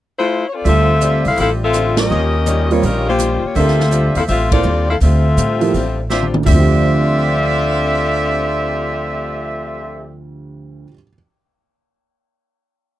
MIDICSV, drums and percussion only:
0, 0, Header, 1, 2, 480
1, 0, Start_track
1, 0, Key_signature, -1, "minor"
1, 0, Tempo, 364078
1, 864, Time_signature, 4, 2, 24, 8
1, 17137, End_track
2, 0, Start_track
2, 0, Title_t, "Drums"
2, 864, Note_on_c, 9, 46, 42
2, 996, Note_off_c, 9, 46, 0
2, 1336, Note_on_c, 9, 42, 47
2, 1468, Note_off_c, 9, 42, 0
2, 1646, Note_on_c, 9, 46, 38
2, 1778, Note_off_c, 9, 46, 0
2, 1812, Note_on_c, 9, 46, 42
2, 1944, Note_off_c, 9, 46, 0
2, 2291, Note_on_c, 9, 37, 57
2, 2293, Note_on_c, 9, 42, 50
2, 2422, Note_off_c, 9, 37, 0
2, 2425, Note_off_c, 9, 42, 0
2, 2596, Note_on_c, 9, 38, 81
2, 2599, Note_on_c, 9, 51, 62
2, 2728, Note_off_c, 9, 38, 0
2, 2731, Note_off_c, 9, 51, 0
2, 3251, Note_on_c, 9, 42, 46
2, 3383, Note_off_c, 9, 42, 0
2, 3568, Note_on_c, 9, 46, 36
2, 3700, Note_off_c, 9, 46, 0
2, 3734, Note_on_c, 9, 46, 42
2, 3866, Note_off_c, 9, 46, 0
2, 4209, Note_on_c, 9, 37, 51
2, 4212, Note_on_c, 9, 42, 53
2, 4341, Note_off_c, 9, 37, 0
2, 4344, Note_off_c, 9, 42, 0
2, 4692, Note_on_c, 9, 46, 44
2, 4823, Note_off_c, 9, 46, 0
2, 4852, Note_on_c, 9, 38, 23
2, 4984, Note_off_c, 9, 38, 0
2, 5013, Note_on_c, 9, 38, 41
2, 5145, Note_off_c, 9, 38, 0
2, 5170, Note_on_c, 9, 42, 47
2, 5302, Note_off_c, 9, 42, 0
2, 5472, Note_on_c, 9, 46, 38
2, 5604, Note_off_c, 9, 46, 0
2, 5648, Note_on_c, 9, 46, 45
2, 5779, Note_off_c, 9, 46, 0
2, 5953, Note_on_c, 9, 36, 80
2, 5957, Note_on_c, 9, 51, 71
2, 6085, Note_off_c, 9, 36, 0
2, 6088, Note_off_c, 9, 51, 0
2, 6608, Note_on_c, 9, 46, 44
2, 6740, Note_off_c, 9, 46, 0
2, 7090, Note_on_c, 9, 42, 52
2, 7221, Note_off_c, 9, 42, 0
2, 7398, Note_on_c, 9, 46, 39
2, 7530, Note_off_c, 9, 46, 0
2, 7568, Note_on_c, 9, 46, 39
2, 7700, Note_off_c, 9, 46, 0
2, 8047, Note_on_c, 9, 38, 46
2, 8179, Note_off_c, 9, 38, 0
2, 8208, Note_on_c, 9, 47, 47
2, 8340, Note_off_c, 9, 47, 0
2, 8359, Note_on_c, 9, 47, 77
2, 8491, Note_off_c, 9, 47, 0
2, 8522, Note_on_c, 9, 43, 89
2, 8522, Note_on_c, 9, 46, 68
2, 8523, Note_on_c, 9, 36, 98
2, 8654, Note_off_c, 9, 43, 0
2, 8654, Note_off_c, 9, 46, 0
2, 8655, Note_off_c, 9, 36, 0
2, 17137, End_track
0, 0, End_of_file